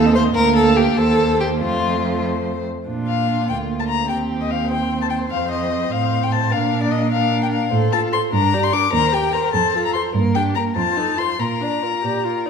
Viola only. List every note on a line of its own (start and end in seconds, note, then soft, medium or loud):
0.05 0.15 C4 medium
0.13 0.26 A3 medium
0.24 0.34 C4 medium
0.34 0.93 A#3 medium
0.97 1.63 A#3 medium
1.61 2.67 A3 medium
2.88 3.51 D4 soft
3.50 4.10 A#3 soft
4.10 5.29 C4 soft
5.32 6.49 C4 soft
6.53 7.11 D4 soft
7.11 7.71 D4 soft
7.73 7.95 A4 soft
7.93 8.14 F4 soft
8.13 8.33 A4 soft
8.33 8.55 D4 soft
8.54 8.75 G4 soft
8.73 8.92 D4 medium
8.93 9.14 A#4 medium
9.12 9.34 G4 soft
9.33 9.53 A#4 soft
9.53 9.76 A4 soft
9.75 9.97 F4 soft
9.96 10.15 A4 soft
10.15 10.38 A#3 medium
10.36 10.57 D4 soft
10.56 10.76 A#3 soft
10.77 10.98 F4 soft
10.97 11.19 D#4 soft
11.18 11.39 F4 soft
11.40 11.63 F4 soft
11.61 11.85 D4 soft
11.83 12.03 F4 soft
12.04 12.26 G4 medium
12.24 12.47 F4 soft
12.46 12.50 D#4 medium